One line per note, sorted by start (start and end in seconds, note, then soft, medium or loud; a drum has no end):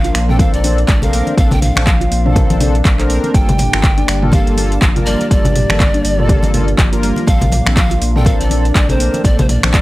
0.00 0.11 A#1 medium
0.00 1.36 A#3 medium
0.00 7.24 D4 medium
0.00 0.31 F5 loud
0.04 0.14 F4 loud
0.04 closed hi-hat soft
0.04 muted conga soft
0.15 0.49 A#1 medium
0.15 0.22 A#3 medium
0.15 finger snap medium
0.15 open hi-hat medium
0.29 0.61 C4 loud
0.29 0.61 D4 medium
0.29 0.34 D4 medium
0.29 0.61 A4 loud
0.29 0.41 G5 loud
0.29 mid tom medium
0.39 0.47 A#4 medium
0.39 0.55 F5 loud
0.39 kick loud
0.39 closed hi-hat medium
0.39 muted conga soft
0.39 high conga loud
0.54 0.85 A#1 medium
0.54 0.88 D5 loud
0.54 closed hi-hat soft
0.64 0.78 C4 loud
0.64 0.77 D4 loud
0.64 0.78 D4 medium
0.64 0.78 A4 loud
0.64 open hi-hat medium
0.64 high conga medium
0.78 closed hi-hat soft
0.88 1.22 A#1 medium
0.88 1.01 A3 medium
0.88 1.02 D5 loud
0.88 kick loud
0.88 clap medium
0.88 closed hi-hat medium
0.88 muted conga soft
1.02 1.35 C4 medium
1.02 1.35 D4 medium
1.02 1.12 A4 medium
1.02 1.35 A#4 loud
1.02 1.35 F5 loud
1.02 closed hi-hat soft
1.02 low conga medium
1.13 1.21 A#3 medium
1.13 open hi-hat medium
1.27 closed hi-hat soft
1.27 muted conga medium
1.38 1.71 A#1 loud
1.38 1.45 A#3 medium
1.38 1.52 C4 medium
1.38 3.33 C4 medium
1.38 1.52 D4 medium
1.38 1.52 A4 loud
1.38 1.51 F5 loud
1.38 kick loud
1.38 closed hi-hat medium
1.51 1.64 G5 loud
1.51 closed hi-hat soft
1.51 high conga medium
1.51 low conga loud
1.62 3.10 F5 loud
1.62 mid tom medium
1.62 open hi-hat medium
1.62 muted conga medium
1.76 2.08 A#1 medium
1.76 1.87 C4 medium
1.76 1.87 D4 medium
1.76 1.87 A4 loud
1.76 finger snap loud
1.76 high conga medium
1.87 2.00 F3 medium
1.87 kick loud
1.87 clap loud
1.87 closed hi-hat medium
2.01 2.10 F4 loud
2.01 closed hi-hat soft
2.01 muted conga soft
2.11 2.45 A#1 medium
2.11 2.19 A#3 medium
2.11 open hi-hat medium
2.26 2.58 C4 loud
2.26 2.31 D4 medium
2.26 2.58 D4 medium
2.26 2.58 A4 loud
2.26 mid tom medium
2.36 2.44 A#4 medium
2.36 kick loud
2.36 closed hi-hat medium
2.36 muted conga medium
2.36 low conga loud
2.50 2.82 A#1 loud
2.50 closed hi-hat soft
2.50 high conga loud
2.61 2.75 C4 loud
2.61 2.74 D4 loud
2.61 2.75 D4 medium
2.61 2.75 A4 loud
2.61 open hi-hat medium
2.61 low conga medium
2.75 closed hi-hat soft
2.85 3.19 A#1 medium
2.85 2.98 A3 medium
2.85 kick loud
2.85 clap loud
2.85 closed hi-hat medium
2.85 muted conga soft
2.99 3.32 C4 medium
2.99 3.32 D4 medium
2.99 3.09 A4 medium
2.99 3.32 A#4 loud
2.99 clap soft
2.99 closed hi-hat soft
3.10 3.17 A#3 medium
3.10 open hi-hat medium
3.24 closed hi-hat soft
3.24 muted conga medium
3.34 3.68 G1 loud
3.34 3.42 G3 medium
3.34 7.24 G3 medium
3.34 7.24 A#3 medium
3.34 3.49 A#3 medium
3.34 3.49 F4 medium
3.34 3.49 A4 loud
3.34 4.29 G5 loud
3.34 7.24 A5 medium
3.34 kick loud
3.34 closed hi-hat medium
3.49 closed hi-hat soft
3.49 high conga medium
3.49 low conga loud
3.58 mid tom medium
3.58 open hi-hat medium
3.58 muted conga soft
3.73 4.05 G1 medium
3.73 3.84 A#3 medium
3.73 3.84 F4 medium
3.73 3.84 A4 medium
3.73 finger snap loud
3.73 high conga medium
3.83 3.96 D3 medium
3.83 kick loud
3.83 clap loud
3.83 closed hi-hat medium
3.97 4.07 D4 loud
3.97 closed hi-hat soft
3.97 muted conga soft
4.08 4.42 G1 medium
4.08 4.16 G3 medium
4.08 finger snap medium
4.08 open hi-hat medium
4.22 4.28 A#3 medium
4.22 4.55 A#3 loud
4.22 4.55 F4 medium
4.22 4.55 A4 loud
4.22 mid tom medium
4.32 4.40 G4 medium
4.32 4.78 F5 medium
4.32 kick loud
4.32 closed hi-hat medium
4.32 muted conga soft
4.32 high conga medium
4.47 4.78 G1 medium
4.47 closed hi-hat soft
4.57 4.71 A#3 loud
4.57 4.72 A#3 medium
4.57 4.72 F4 medium
4.57 4.72 A4 loud
4.57 open hi-hat medium
4.57 high conga medium
4.72 closed hi-hat soft
4.82 5.16 G1 medium
4.82 4.95 F3 medium
4.82 kick loud
4.82 clap loud
4.82 closed hi-hat medium
4.82 muted conga soft
4.96 5.29 A#3 medium
4.96 5.05 F4 medium
4.96 5.29 F4 medium
4.96 5.29 A#4 loud
4.96 closed hi-hat soft
4.96 low conga medium
5.06 5.14 G3 medium
5.06 5.29 D5 loud
5.06 open hi-hat medium
5.21 closed hi-hat soft
5.21 muted conga medium
5.31 5.65 G1 loud
5.31 5.39 G3 medium
5.31 5.46 A#3 loud
5.31 5.45 F4 medium
5.31 5.45 A4 loud
5.31 6.99 D5 loud
5.31 kick loud
5.31 closed hi-hat medium
5.45 closed hi-hat soft
5.45 high conga medium
5.45 low conga loud
5.56 mid tom loud
5.56 open hi-hat medium
5.56 muted conga medium
5.70 6.01 G1 medium
5.70 5.81 A#3 medium
5.70 5.81 F4 medium
5.70 5.81 A4 medium
5.70 finger snap medium
5.70 high conga medium
5.80 5.93 D3 medium
5.80 kick loud
5.80 clap loud
5.80 closed hi-hat medium
5.94 6.04 D4 loud
5.94 closed hi-hat soft
5.94 muted conga soft
6.05 6.38 G1 medium
6.05 6.12 G3 medium
6.05 open hi-hat medium
6.19 6.25 A#3 medium
6.19 6.51 A#3 loud
6.19 6.51 F4 loud
6.19 6.51 A4 loud
6.19 mid tom medium
6.29 6.37 G4 medium
6.29 kick loud
6.29 closed hi-hat medium
6.29 muted conga medium
6.29 low conga medium
6.43 6.75 G1 medium
6.43 closed hi-hat soft
6.43 high conga medium
6.54 6.68 A#3 medium
6.54 6.67 A#3 loud
6.54 6.68 F4 medium
6.54 6.68 A4 loud
6.54 open hi-hat medium
6.54 low conga medium
6.68 closed hi-hat soft
6.78 7.12 G1 medium
6.78 6.91 F3 medium
6.78 kick loud
6.78 clap loud
6.78 closed hi-hat medium
6.78 muted conga soft
6.92 7.25 A#3 medium
6.92 7.25 F4 medium
6.92 7.02 F4 medium
6.92 7.25 A#4 loud
6.92 closed hi-hat soft
7.03 7.11 G3 medium
7.03 open hi-hat medium
7.16 closed hi-hat soft
7.16 muted conga medium
7.27 7.61 A#1 loud
7.27 7.35 A#3 medium
7.27 9.81 A#3 medium
7.27 7.42 C4 medium
7.27 7.42 D4 medium
7.27 9.81 D4 medium
7.27 7.42 A4 loud
7.27 7.73 F5 loud
7.27 kick loud
7.27 closed hi-hat medium
7.41 closed hi-hat soft
7.41 high conga medium
7.41 low conga loud
7.52 mid tom medium
7.52 open hi-hat medium
7.52 muted conga medium
7.66 7.98 A#1 medium
7.66 7.77 C4 medium
7.66 7.77 D4 medium
7.66 7.77 A4 medium
7.66 finger snap medium
7.66 high conga medium
7.77 7.90 F3 medium
7.77 8.13 F5 loud
7.77 kick loud
7.77 clap loud
7.77 closed hi-hat medium
7.90 8.01 F4 loud
7.90 closed hi-hat soft
7.90 muted conga soft
8.02 8.35 A#1 medium
8.02 8.09 A#3 medium
8.02 open hi-hat medium
8.15 8.48 C4 loud
8.15 8.48 D4 medium
8.15 8.21 D4 medium
8.15 8.48 A4 loud
8.15 8.28 G5 loud
8.15 mid tom medium
8.25 8.34 A#4 medium
8.25 8.42 F5 loud
8.25 kick loud
8.25 closed hi-hat medium
8.25 muted conga medium
8.25 high conga medium
8.40 8.71 A#1 medium
8.40 8.75 D5 loud
8.40 closed hi-hat soft
8.50 8.65 C4 medium
8.50 8.65 D4 medium
8.50 8.64 D4 loud
8.50 8.65 A4 loud
8.50 open hi-hat medium
8.50 high conga medium
8.65 closed hi-hat soft
8.75 9.09 A#1 medium
8.75 8.88 A3 medium
8.75 8.91 D5 loud
8.75 kick loud
8.75 clap loud
8.75 closed hi-hat medium
8.75 muted conga soft
8.89 9.22 C4 medium
8.89 9.22 D4 medium
8.89 8.99 A4 medium
8.89 9.22 A#4 loud
8.89 9.26 C5 loud
8.89 closed hi-hat soft
8.89 low conga medium
9.00 9.08 A#3 medium
9.00 open hi-hat medium
9.14 closed hi-hat soft
9.14 muted conga medium
9.24 9.58 A#1 loud
9.24 9.32 A#3 medium
9.24 9.39 C4 loud
9.24 9.39 D4 medium
9.24 9.39 A4 loud
9.24 9.41 D5 loud
9.24 kick loud
9.24 closed hi-hat medium
9.24 high conga medium
9.39 9.51 C5 medium
9.39 closed hi-hat soft
9.39 high conga medium
9.39 low conga loud
9.49 9.81 D5 loud
9.49 mid tom medium
9.49 open hi-hat medium
9.49 muted conga medium
9.63 9.81 A#1 medium
9.63 9.74 C4 medium
9.63 9.74 D4 medium
9.63 9.74 A4 loud
9.63 finger snap medium
9.63 closed hi-hat soft
9.63 high conga medium
9.74 9.81 F3 medium
9.74 kick loud
9.74 clap loud
9.74 closed hi-hat medium